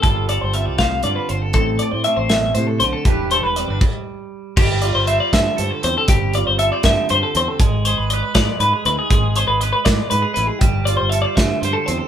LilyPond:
<<
  \new Staff \with { instrumentName = "Clean electric guitar" } { \time 6/8 \key g \mixolydian \tempo 4. = 79 a'8 d''16 c''16 e''16 d''16 f''8 d''16 b'16 c''16 a'16 | a'8 d''16 c''16 e''16 c''16 e''8 c''16 a'16 c''16 a'16 | g'8 c''16 b'16 d''16 b'16 r4. | g'8 d''16 c''16 e''16 d''16 e''8 c''16 a'16 c''16 a'16 |
g'8 d''16 c''16 e''16 d''16 e''8 c''16 a'16 c''16 a'16 | gis'8 c''16 b'16 d''16 b'16 d''8 b'16 gis'16 b'16 gis'16 | gis'8 c''16 b'16 d''16 b'16 d''8 b'16 gis'16 b'16 gis'16 | g'8 d''16 c''16 e''16 d''16 e''8 c''16 a'16 c''16 a'16 | }
  \new Staff \with { instrumentName = "Clean electric guitar" } { \time 6/8 \key g \mixolydian << { <c' f'>8 a'8 f'8 c''8 f'4 | c'8 d''8 c'2 | <g d' g' b'>8 a'16 b'16 c'16 d'16 r4. | r8 f'8 c''4 a'16 c''8. |
r8 f'8 a'16 c''8. c''4 | r8 gis'8 b'4 b'4 | r8 gis'8 b'4 b'4 | r8 f'8 a'16 c''8. c''4 | } \\ { g4 c'4 d4 | a,4 a8 b,8 c8 d8 | e4 g2 | g4. d4 c'8 |
g4. d4 c'8 | gis4. gis4 e'8 | gis4. gis4 e'8 | g4. d4 c'8 | } >> }
  \new Staff \with { instrumentName = "Fingered electric bass" } { \clef bass \time 6/8 \key g \mixolydian g,,8. g,,8 c,8. g,16 r16 g,,8 | a,,8 r16 a,16 r16 a,,8. a,8 b,,16 r16 | e,,8. e,,8 g,,16 r4. | g,,8. g,,8 r16 g,16 r16 g,16 r16 e,16 r16 |
g,,8. g,,8 r16 g,16 r16 g,16 r16 e,16 r16 | gis,,8. gis,,8 r16 gis,16 r16 gis,16 r16 d,16 r16 | gis,,8. gis,,8 r16 gis,16 r16 gis,16 r16 a,,16 r16 | g,,8. g,,8 r16 g,16 r16 g,16 r16 e,16 r16 | }
  \new DrumStaff \with { instrumentName = "Drums" } \drummode { \time 6/8 <hh bd>8 hh8 hh8 <hh bd sn>8 hh8 hh8 | <hh bd>8 hh8 hh8 <hh sn>8 hh8 hh8 | <hh bd>8 hh8 hh8 <cymc bd>4. | <cymc bd>8 hh8 hh8 <hh bd sn>8 hh8 hh8 |
<hh bd>8 hh8 hh8 <hh bd sn>8 hh8 hh8 | <hh bd>8 hh8 hh8 <hh bd sn>8 hh8 hh8 | <hh bd>8 hh8 hh8 <hh bd sn>8 hh8 hh8 | <hh bd>8 hh8 hh8 <hh bd sn>8 hh8 hh8 | }
>>